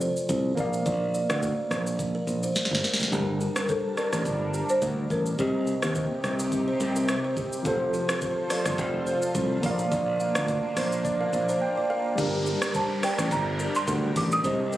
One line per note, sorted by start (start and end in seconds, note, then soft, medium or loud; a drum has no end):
0.00 0.52 F3 medium
0.00 0.53 F4 medium
0.00 0.54 A4 medium
0.00 0.55 C5 medium
0.00 0.10 C5 medium
0.00 shaker medium
0.17 shaker medium
0.29 0.52 C2 medium
0.29 0.45 C5 medium
0.29 kick loud
0.29 shaker medium
0.55 0.80 A#1 medium
0.55 2.79 A#3 medium
0.55 2.80 A#4 medium
0.55 2.81 D5 medium
0.55 kick medium
0.55 shaker medium
0.60 2.81 F5 medium
0.73 shaker medium
0.86 1.21 A#1 loud
0.86 0.95 D5 loud
0.86 kick loud
0.86 shaker medium
1.14 1.23 D5 medium
1.14 shaker medium
1.29 1.52 D2 medium
1.29 cross-stick loud
1.29 shaker medium
1.43 1.58 A#4 medium
1.43 kick medium
1.43 shaker medium
1.71 2.16 A#1 medium
1.71 cross-stick medium
1.71 shaker medium
1.87 shaker medium
1.99 kick medium
1.99 shaker medium
2.15 2.22 A#4 medium
2.27 2.50 A#1 medium
2.27 shaker soft
2.43 2.50 C5 medium
2.43 shaker medium
2.56 snare medium
2.56 shaker medium
2.65 snare medium
2.71 2.81 G1 medium
2.71 2.84 C5 medium
2.71 snare medium
2.84 2.93 A#4 medium
2.84 snare medium
2.84 shaker medium
2.94 snare loud
2.99 3.10 F1 medium
2.99 snare medium
2.99 shaker medium
3.10 3.47 G1 loud
3.10 5.34 G3 medium
3.10 5.36 G3 medium
3.10 5.34 D4 medium
3.10 5.37 D4 medium
3.10 5.35 G4 medium
3.10 5.36 A#4 medium
3.10 5.37 A5 medium
3.10 kick loud
3.10 shaker medium
3.15 5.36 A#4 medium
3.41 3.49 G4 medium
3.41 shaker medium
3.56 3.63 A#4 medium
3.56 cross-stick loud
3.56 shaker medium
3.64 3.69 A#4 medium
3.69 3.99 A4 loud
3.69 3.78 C5 medium
3.69 kick medium
3.69 shaker medium
3.97 4.72 A#4 medium
3.97 4.06 D5 medium
3.97 cross-stick medium
3.97 shaker medium
4.13 4.23 A1 medium
4.13 cross-stick medium
4.13 shaker medium
4.25 4.60 G1 medium
4.25 kick medium
4.25 shaker medium
4.54 4.63 A#4 medium
4.54 shaker medium
4.69 5.12 C5 loud
4.69 shaker medium
4.82 5.04 D2 loud
4.82 4.98 A#4 medium
4.82 kick medium
4.82 shaker medium
5.10 5.33 A1 medium
5.10 5.40 A#4 medium
5.10 kick medium
5.10 shaker medium
5.26 shaker medium
5.36 5.73 C2 loud
5.36 7.60 C3 medium
5.36 7.63 C3 medium
5.36 7.61 C4 medium
5.36 7.63 C4 medium
5.36 7.63 D#4 medium
5.36 7.63 G4 medium
5.36 7.33 G4 medium
5.36 7.62 G4 medium
5.36 5.47 C5 loud
5.36 kick loud
5.36 shaker medium
5.42 7.63 D#5 medium
5.67 5.76 A#4 medium
5.67 shaker medium
5.82 6.05 D#2 loud
5.82 cross-stick loud
5.82 shaker medium
5.95 6.11 C5 medium
5.95 kick medium
5.95 shaker medium
6.24 6.69 C2 medium
6.24 cross-stick medium
6.24 shaker medium
6.39 shaker medium
6.52 kick medium
6.52 shaker medium
6.68 6.75 C5 medium
6.80 7.15 C2 medium
6.80 shaker medium
6.96 7.03 A#4 medium
6.96 shaker medium
7.08 cross-stick loud
7.08 shaker medium
7.24 7.31 C5 medium
7.37 7.46 G4 medium
7.37 kick medium
7.37 shaker medium
7.52 shaker medium
7.63 8.00 F1 loud
7.63 9.58 F3 medium
7.63 9.61 F3 medium
7.63 9.59 F4 medium
7.63 12.14 F4 medium
7.63 9.61 A4 medium
7.63 9.60 A4 medium
7.63 9.61 C5 medium
7.63 kick loud
7.63 shaker medium
7.68 9.61 C5 medium
7.94 8.02 G4 medium
7.94 shaker medium
8.09 8.16 A4 medium
8.09 cross-stick loud
8.09 shaker medium
8.22 8.30 C5 medium
8.22 kick loud
8.22 shaker medium
8.50 8.59 D5 medium
8.50 cross-stick medium
8.50 open hi-hat medium
8.50 shaker medium
8.66 8.76 G1 medium
8.66 cross-stick medium
8.66 shaker medium
8.78 9.13 F1 loud
8.78 kick medium
8.78 shaker medium
9.07 9.15 C5 medium
9.07 shaker soft
9.22 shaker medium
9.35 9.57 C2 medium
9.35 9.50 C5 medium
9.35 kick loud
9.35 shaker medium
9.61 9.86 A#1 loud
9.61 11.85 A#3 medium
9.61 12.15 A#3 medium
9.61 12.15 D4 medium
9.61 11.85 A#4 medium
9.61 9.71 C#5 medium
9.61 kick medium
9.61 open hi-hat medium
9.61 shaker soft
9.66 11.19 F5 medium
9.71 11.04 D5 medium
9.79 shaker medium
9.92 10.26 A#1 loud
9.92 10.00 D5 loud
9.92 kick loud
9.92 shaker medium
10.20 10.29 F5 medium
10.20 shaker medium
10.35 10.58 D2 medium
10.35 cross-stick loud
10.35 shaker medium
10.48 10.64 D5 medium
10.48 kick medium
10.48 shaker medium
10.77 11.21 A#1 medium
10.77 11.03 C5 medium
10.77 cross-stick medium
10.77 open hi-hat medium
10.77 shaker medium
10.92 shaker medium
11.05 11.19 D5 medium
11.05 kick medium
11.05 shaker medium
11.20 11.27 A#4 medium
11.20 11.59 F5 medium
11.33 11.56 A#1 loud
11.33 shaker medium
11.49 11.56 C5 medium
11.49 shaker medium
11.61 11.88 G5 medium
11.77 11.84 D5 medium
11.90 11.98 A#4 medium
11.90 12.16 F5 medium
12.15 12.53 G1 loud
12.15 14.39 G3 medium
12.15 14.42 G3 medium
12.15 14.40 D4 medium
12.15 14.42 D4 medium
12.15 14.42 G4 medium
12.15 14.41 G4 medium
12.15 14.42 A#4 medium
12.15 kick loud
12.15 downlifter medium
12.15 shaker medium
12.20 14.42 A#4 medium
12.46 12.55 G4 medium
12.46 shaker medium
12.62 12.69 A#4 medium
12.62 cross-stick loud
12.62 shaker medium
12.74 12.83 C5 medium
12.74 13.04 A5 medium
12.74 kick loud
12.74 shaker medium
13.03 13.12 D5 medium
13.03 13.33 G5 medium
13.03 cross-stick loud
13.03 open hi-hat medium
13.03 shaker medium
13.18 13.29 A1 medium
13.18 cross-stick medium
13.18 shaker medium
13.31 13.66 G1 loud
13.31 13.77 A#5 medium
13.31 kick medium
13.31 shaker medium
13.59 13.68 A#4 medium
13.59 shaker medium
13.75 14.18 C6 loud
13.75 shaker medium
13.88 14.10 D2 medium
13.88 14.04 A#4 medium
13.88 kick loud
13.88 shaker medium
14.16 14.38 A1 medium
14.16 14.33 D6 loud
14.16 kick loud
14.16 open hi-hat medium
14.16 shaker medium
14.32 14.77 D#6 loud
14.32 shaker medium
14.42 14.77 C2 loud
14.42 14.77 C3 medium
14.42 14.77 C4 medium
14.42 14.77 D#4 medium
14.42 14.77 G4 medium
14.42 14.53 C5 loud
14.42 kick loud
14.42 shaker medium
14.47 14.77 D#5 medium
14.73 14.77 A#4 medium
14.73 shaker medium